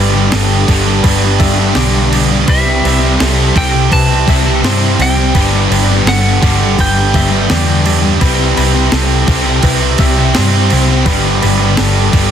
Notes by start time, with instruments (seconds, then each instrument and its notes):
Already playing: fingered electric bass G1, distorted electric guitar G2 D3 G3, overdriven electric guitar G2 D3 G3, clean electric guitar B4
0.00 overdriven electric guitar B3 D4 G4
0.12 distorted electric guitar D3 G3, overdriven electric guitar D4 G4
0.16 overdriven electric guitar G3 B3
0.32 fingered electric bass G1, distorted electric guitar G2 D3 G3, overdriven electric guitar G2 D3 G3 B3 D4 G4, clean electric guitar A4, snare, crash
0.67 fingered electric bass G1, distorted electric guitar G2 D3 G3, overdriven electric guitar G3 B3 D4, kick, crash
0.72 distorted electric guitar G2, overdriven electric guitar G4
0.85 overdriven electric guitar D4 G4, muted distorted electric guitar stroke
0.90 overdriven electric guitar G3 B3
1.04 fingered electric bass G1, overdriven electric guitar G3 B3, clean electric guitar B4, kick, crash
1.08 overdriven electric guitar D4 G4
1.24 overdriven electric guitar G3 B3 D4 G4
1.39 distorted electric guitar G2 D3 G3, clean electric guitar E5, kick, crash
1.58 overdriven electric guitar B3 D4 G4, muted distorted electric guitar stroke
1.62 overdriven electric guitar G3
1.73 fingered electric bass B1, distorted electric guitar G2 D3 G3, overdriven electric guitar G2 D3 G3, clean electric guitar D5, snare, crash
1.78 overdriven electric guitar B3 D4 G4
2.11 distorted electric guitar G2 D3 G3, overdriven electric guitar G3 B3 D4, crash
2.15 overdriven electric guitar G4
2.28 distorted electric guitar D3 G3, overdriven electric guitar D4 G4
2.33 overdriven electric guitar G3 B3
2.47 fingered electric bass C2, distorted electric guitar C3 G3 C4, overdriven electric guitar C3 G3 C4 E4, clean electric guitar B4, lead electric guitar E5, kick, crash
2.52 overdriven electric guitar G4
2.66 distorted electric guitar G3 C4
2.84 fingered electric bass C2, overdriven electric guitar G3 C4 E4 G4, clean electric guitar B4, crash
3.00 distorted electric guitar G3 C4, overdriven electric guitar E4 G4
3.04 overdriven electric guitar C4
3.18 fingered electric bass C2, overdriven electric guitar C3 G3 C4 E4 G4, distorted electric guitar C3 G3 C4, clean electric guitar A4, snare, crash
3.54 fingered electric bass C2, distorted electric guitar C3 G3 C4, overdriven electric guitar G3 C4 E4 G4, lead electric guitar G5, kick, crash
3.59 distorted electric guitar C3
3.72 overdriven electric guitar C4 E4 G4, muted distorted electric guitar stroke
3.91 fingered electric bass C2, overdriven electric guitar G3 C4 E4 G4, clean electric guitar B4, lead electric guitar A5, kick, crash
4.08 overdriven electric guitar C4 E4 G4
4.27 fingered electric bass C2, distorted electric guitar C3 G3 C4, clean electric guitar E5, kick, crash
4.45 overdriven electric guitar C4 E4 G4, muted distorted electric guitar stroke
4.61 fingered electric bass G2, overdriven electric guitar C3 G3 C4 E4 G4, distorted electric guitar C3, clean electric guitar C5, snare, crash
4.66 distorted electric guitar G3 C4
4.97 fingered electric bass C2, distorted electric guitar C3, overdriven electric guitar G3 C4 E4 G4, crash
5.02 distorted electric guitar G3 C4, lead electric guitar G5
5.17 distorted electric guitar G3 C4, overdriven electric guitar C4 E4 G4
5.34 fingered electric bass G1, overdriven electric guitar G2 D3 G3 B3 D4 G4, distorted electric guitar G2 D3, clean electric guitar B4, kick, crash
5.39 distorted electric guitar G3
5.53 distorted electric guitar D3 G3
5.69 fingered electric bass G1, overdriven electric guitar G3 B3 D4 G4, clean electric guitar B4, crash
5.89 distorted electric guitar G3, overdriven electric guitar G3 B3 D4 G4
5.93 distorted electric guitar D3
6.05 fingered electric bass G1, overdriven electric guitar G2 D3 G3 B3 D4, distorted electric guitar G2 D3, clean electric guitar A4, lead electric guitar F#5, snare, crash
6.09 distorted electric guitar G3, overdriven electric guitar G4
6.41 fingered electric bass G1, distorted electric guitar G2 D3, overdriven electric guitar G3 B3 D4 G4, kick, crash
6.45 distorted electric guitar G2 G3
6.59 overdriven electric guitar G3 B3 D4 G4, muted distorted electric guitar stroke
6.77 fingered electric bass G1, overdriven electric guitar G3 B3 D4 G4, clean electric guitar B4, lead electric guitar G5, kick, crash
6.95 overdriven electric guitar G3 B3 D4 G4
7.13 distorted electric guitar G2 D3 G3, clean electric guitar E5, kick, crash
7.31 overdriven electric guitar G3 B3 D4 G4, muted distorted electric guitar stroke
7.48 fingered electric bass E2, distorted electric guitar G2 D3 G3, overdriven electric guitar G2 D3 G3 B3 D4 G4, clean electric guitar D5, snare, crash
7.84 distorted electric guitar G2 D3 G3, overdriven electric guitar G3 B3 D4 G4, crash
8.02 distorted electric guitar D3 G3, overdriven electric guitar G3 B3 D4 G4
8.19 fingered electric bass C2, overdriven electric guitar C3 G3 C4 E4 G4, distorted electric guitar C3 G3, clean electric guitar B4, kick, crash
8.24 distorted electric guitar C4
8.38 distorted electric guitar G3 C4
8.56 fingered electric bass C2, overdriven electric guitar G3 C4 E4 G4, clean electric guitar B4, crash
8.74 distorted electric guitar G3 C4, overdriven electric guitar C4 E4 G4
8.92 fingered electric bass C2, distorted electric guitar C3 G3 C4, overdriven electric guitar C3 G3 C4 E4 G4, clean electric guitar A4, snare, crash
9.28 fingered electric bass C2, distorted electric guitar C3 G3 C4, overdriven electric guitar G3 C4 E4 G4, kick, crash
9.32 distorted electric guitar C3
9.46 overdriven electric guitar C4 E4 G4, muted distorted electric guitar stroke
9.63 fingered electric bass C2, overdriven electric guitar G3 C4 E4 G4, clean electric guitar B4, kick, crash
9.81 overdriven electric guitar C4 E4 G4
9.98 fingered electric bass C2, distorted electric guitar C3 G3, clean electric guitar E5, kick, crash
10.02 distorted electric guitar C4
10.16 overdriven electric guitar C4 E4 G4, muted distorted electric guitar stroke
10.35 fingered electric bass G2, distorted electric guitar C3 G3 C4, overdriven electric guitar C3 G3 C4 E4 G4, clean electric guitar C5, snare, crash
10.70 fingered electric bass C2, distorted electric guitar C3 G3 C4, overdriven electric guitar G3 C4 E4 G4, crash
10.88 distorted electric guitar G3 C4, overdriven electric guitar E4 G4
10.92 overdriven electric guitar C4
11.05 fingered electric bass G1, distorted electric guitar G2 D3 G3, overdriven electric guitar G2 D3 G3 B3 D4 G4, clean electric guitar B4, kick, crash
11.23 distorted electric guitar D3 G3
11.42 fingered electric bass G1, overdriven electric guitar G3 B3 D4, clean electric guitar B4, crash
11.46 overdriven electric guitar G4
11.59 distorted electric guitar D3 G3, overdriven electric guitar G3 B3 D4 G4
11.76 fingered electric bass G1, distorted electric guitar G2 D3 G3, overdriven electric guitar G2 D3 G3 B3 D4 G4, clean electric guitar A4, snare, crash
12.12 fingered electric bass G1, distorted electric guitar G2 D3 G3, overdriven electric guitar G3 B3 D4 G4, kick, crash